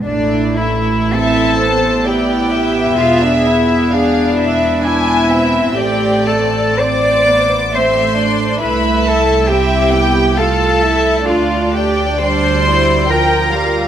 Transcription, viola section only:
\new Staff \with { instrumentName = "Viola section" } { \time 3/4 \key a \minor \tempo 4 = 65 << { e'2 e'4 | gis'4 gis'8 e'8 d'8 c'8~ | c'2 c'8 d'8 | e'4 e'4 f'8 e'8 |
d'4 d'8 e'8 f'4 | } \\ { a4 c'8 b4.~ | b2. | a4 c'8 b8 a4 | a4 c'8 b8 a4~ |
a4 g4 f8 g8 | } >> }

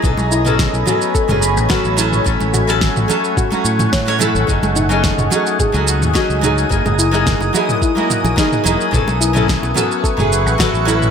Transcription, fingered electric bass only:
\new Staff \with { instrumentName = "Fingered electric bass" } { \clef bass \time 4/4 \key b \mixolydian \tempo 4 = 108 b,,16 b,,8. r16 b,,16 r8. fis,,8 a,,16 r16 a,,8 r16 | a,,16 a,,8. r16 a,,16 r4 a,4~ a,16 a,,16 | fis,,16 fis,,8. r16 fis,,16 r8. cis,8 dis,16 r16 cis,8 r16 | fis,,16 fis,,8. r16 fis,,16 r4 r16 ais,,16 r8 e,,16 r16 |
b,,16 b,,8. r16 b,,16 r8. fis,,8 a,,16 r16 a,,8 r16 | }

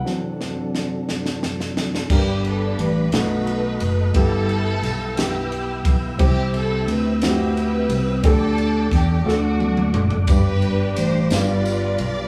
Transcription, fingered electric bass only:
\new Staff \with { instrumentName = "Fingered electric bass" } { \clef bass \time 6/8 \key g \major \tempo 4. = 59 r2. | g,,4 a,,8 b,,4 fis,,8 | g,,4 b,,4. b,,8 | c,4 d,4. c,8 |
d,4 e,8 d,4 fis,,8 | g,,4 a,,8 g,,4 b,,8 | }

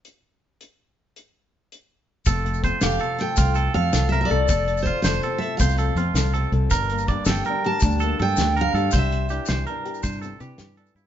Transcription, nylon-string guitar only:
\new Staff \with { instrumentName = "Nylon-string guitar" } { \time 12/8 \key f \major \tempo 4. = 108 << { r1. | c'8 a8 c'8 a'8 c'8 a'4 a8 c'8 a'8 c'8 a'8 | c'8 a4 a'8 c'8 a'8 c'8 a8 c'8 a'8 c'8 a'8 | d'8 bes8 d'8 g'8 d'8 g'8 d'8 bes8 d'8 g'8 d'8 g'8 |
d'4 d'8 g'8 d'8 g'8 d'8 c'8 d'8 g'8 d'8 f'16 r16 | } \\ { r1. | f,4 f4 c4 f,4 f4 c4 | f,4 f4 c4 f,4 f4 c4 | g,4 g4 d4 g,4 g4 d4 |
c4 e4 g,4 c4 e4 g,4 | } >> }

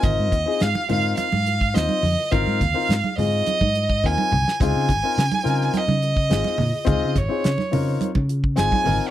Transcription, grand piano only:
\new Staff \with { instrumentName = "Grand piano" } { \time 4/4 \key des \major \tempo 4 = 105 <c' ees' f' bes'>8 r16 <c' ees' f' aes'>16 r16 <f' g'>16 <c' ees' f' bes'>8. r16 <f' bes'>16 r16 <c' ees' f' c''>8 r16 <f' bes'>16 | <c' ees' f' bes'>8 r16 <c' ees' f' bes'>16 r16 <f' aes'>16 <c' ees' f' aes'>8. r16 <f' bes'>16 r16 <c' ees' f' bes'>8 r16 <f' bes'>16 | <c' ees' f' aes'>8 r16 <c' ees' f' bes'>16 r16 <f' aes'>16 <c' ees' f' bes'>8. r16 <f' bes'>16 r16 <c' ees' f' aes'>8 r16 <f' aes'>16 | <c' ees' f' aes'>8 r16 <c' ees' f' aes'>16 r16 <f' bes'>16 <c' ees' f' bes'>8. r16 <f' aes'>16 r16 <c' ees' f' aes'>8 <c' ees' f' bes'>8 | }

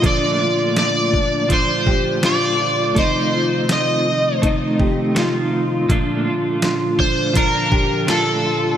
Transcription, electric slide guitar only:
\new Staff \with { instrumentName = "Electric slide guitar" } { \time 4/4 \key bes \major \tempo 4 = 82 d''4 d''4 c''4 d''4 | c''4 ees''4 r2 | r4. c''8 bes'4 a'4 | }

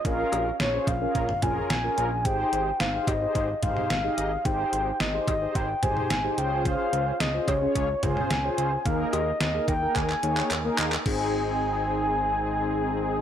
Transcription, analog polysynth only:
\new Staff \with { instrumentName = "Analog polysynth" } { \time 4/4 \key aes \major \tempo 4 = 109 <des' f' aes' bes'>8. r8 <des' f' aes' c''>16 r16 <des' f' aes' bes'>8 r16 <des' f' aes' bes'>8 r16 <des' f' aes' bes'>8 r16 | <ees' g' aes' c''>8. r8 <ees' g' aes' c''>16 r16 <ees' g' aes' c''>8 r16 <ees' g' aes' c''>8 r16 <ees' g' aes' ees''>8 r16 | <ees' g' aes' c''>8. r8 <ees' g' aes' c''>16 r16 <ees' g' aes' c''>8 r16 <ees' g' aes' c''>8 r16 <ees' g' aes' c''>16 <des' f' aes' c''>8~ | <des' f' aes' c''>4 r16 <des' f' aes' c''>16 r16 <des' f' aes' des''>8 r16 <des' f' aes' c''>8 r16 <des' f' aes' c''>8 r16 |
<bes ees' aes' bes'>8. r8 <bes ees' aes' bes'>16 r16 <bes ees' aes' bes'>8 r16 <bes ees' aes' des''>8 r16 <bes ees' aes' bes'>8 r16 | <c' ees' aes'>1 | }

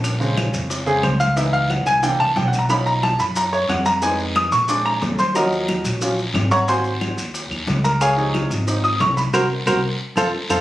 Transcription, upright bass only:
\new Staff \with { instrumentName = "Upright bass" } { \clef bass \time 4/4 \key bes \minor \tempo 4 = 181 bes,,4. f,4. des,4~ | des,4. c,4 c,8 ces,4~ | ces,4. fis,4. eis,4~ | eis,4. bes,,4. ees,4~ |
ees,4. bes,,4. aes,,4~ | aes,,4. ees,4 ees,8 des,4~ | des,4. aes,,4. c,4 | c,8 r8 c,8 r4 f,8 r8 f,8 | }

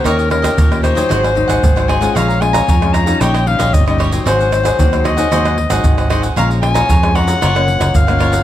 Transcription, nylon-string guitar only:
\new Staff \with { instrumentName = "Nylon-string guitar" } { \time 4/4 \key aes \mixolydian \tempo 4 = 114 << { <bes des' g'>8 <bes des' g'>8 r16 <bes des' g'>8 <ges c' ees'>8. <ges c' ees'>8 r16 <ges c' ees'>8 <aes des' f'>16~ | <aes des' f'>8 <aes des' f'>8 r16 <aes des' f'>8 <g des' ees'>8. <g des' ees'>8. <g des' ees'>8 <ges c' ees'>16~ | <ges c' ees'>8 <ges c' ees'>8. <ges c' ees'>8 <ges c' ees'>16 <ges c' ees'>8 r16 <ges c' ees'>8. <ges c' ees'>16 r16 | <f aes des'>8 <f aes des'>8 r16 <f aes des'>16 <f aes des'>8 <f bes des'>16 <f bes des'>4 <f bes des'>16 <f bes des'>8 | } \\ { ees4 bes,4 aes,4 ees4 | bes,4 f4 bes,4 bes,4 | aes,4 ees4 aes,4 ees4 | bes,4 f,4 ges,4 des4 | } >> }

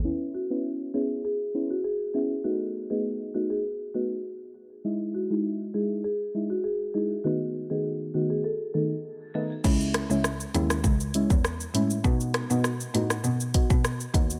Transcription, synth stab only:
\new Staff \with { instrumentName = "Synth stab" } { \time 4/4 \key cis \minor \tempo 4 = 100 <b cis' e'>8. <b cis' e'>8. <b cis' e'>8 r8 <b cis' e'>16 r8. <b cis' e'>16 r16 | <a b dis'>8. <a b dis'>8. <a b dis'>8 r8 <a b dis'>16 r4 r16 | <gis dis' e'>8. <gis dis' e'>8. <gis dis' e'>8 r8 <gis dis' e'>16 r8. <gis dis' e'>16 r16 | <dis a b dis'>8. <dis a b dis'>8. <dis a b dis'>8 r8 <dis a b dis'>16 r8. <dis a b dis'>16 r16 |
<gis cis' e'>8. <gis cis' e'>16 r8 <gis cis' e'>16 r8. <gis cis' e'>16 r8. <gis cis' e'>16 r16 | <b dis' fis'>8. <b dis' fis'>16 r8 <b dis' fis'>16 r8. <b dis' fis'>16 r8. <b dis' fis'>16 r16 | }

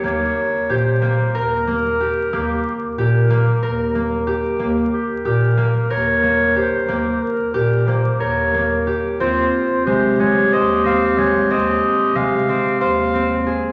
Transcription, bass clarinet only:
\new Staff \with { instrumentName = "Bass clarinet" } { \clef bass \time 7/8 \key ees \mixolydian \tempo 4 = 92 ees,8 r8 bes,4 ees,4. | ees,8 r8 bes,4 ees,4. | ees,8 r8 bes,4 ees,4. | ees,8 r8 bes,4 ees,4. |
ees,8 r8 c4 ees,4. | ees,8 r8 c4 ees,4. | }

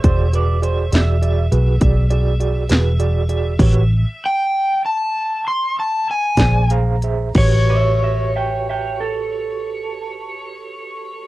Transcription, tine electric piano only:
\new Staff \with { instrumentName = "Tine electric piano" } { \time 12/8 \key a \mixolydian \tempo 4. = 64 << { r1. | r1 r4 bes''4 | r1. | } \\ { <fis' gis' d''>8 <fis' gis' b'>8 <fis' gis' d''>8 <fis' gis' d''>8 <fis' gis' d''>8 <fis' gis' b'>8 <fis' gis' d''>8 <fis' gis' d''>8 <fis' gis' d''>8 <fis' gis' b'>8 <fis' gis' d''>8 <fis' gis' d''>8 | <fis' g' b' cis''>8 r1 <aes' c'' d''>8 <aes' c'' f''>8 <aes' c'' e''>8 | <fis' g' b' cis''>1. | } >> }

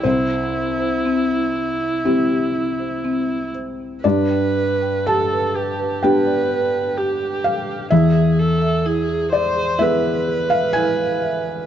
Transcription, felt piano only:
\new Staff \with { instrumentName = "Felt piano" } { \time 4/4 \key c \major \tempo 4 = 63 << { c''2.~ c''8 r8 | d''4 a''4 g''4. f''8 | e''4. d''8 e''8. f''16 gis''4 | } \\ { c,2 <c' e' g'>2 | g,2 <b d' g'>2 | e,2 <b e' gis'>2 | } >> }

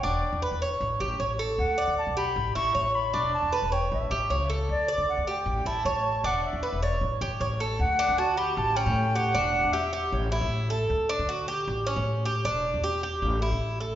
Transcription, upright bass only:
\new Staff \with { instrumentName = "Upright bass" } { \clef bass \time 4/4 \key a \mixolydian \tempo 4 = 155 e,,8 r16 e,8 e,8. a,,8 a,,8 a,,4 | d,8 r16 d8 b,,8. a,,8 a,,8 a,,4 | e,,8 r16 e,8 e,,8. a,,8 a,,8 cis,4 | d,8 r16 d8 d,8. a,,8 a,,8 a,,4 |
e,,8 r16 e,8 e,,8. a,,8 a,,8 a,,4 | d,8. d4~ d16 a,,8. a,4~ a,16 | e,,8. e,4~ e,16 a,,8. a,4~ a,16 | d,8. d4~ d16 a,,8. a,4~ a,16 |
e,,8. e,4~ e,16 a,,8. a,4~ a,16 | }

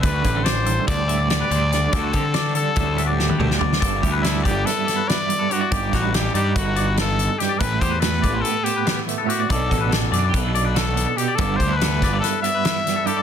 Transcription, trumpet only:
\new Staff \with { instrumentName = "Trumpet" } { \time 9/8 \key g \major \tempo 4. = 95 b'4 c''4 d''4 d''4. | a'4. a'4~ a'16 fis'16 g'4 r8 | r4 e'8 g'8 a'4 d''4 fis'8 | g'8 fis'8 g'8 g'8 fis'4 a'4 g'8 |
b'8 c''8 b'4 a'8 g'8. r8. fis'8 | a'4 r2 a'4 g'8 | a'8 c''8 b'4 a'8 e''4. a'8 | }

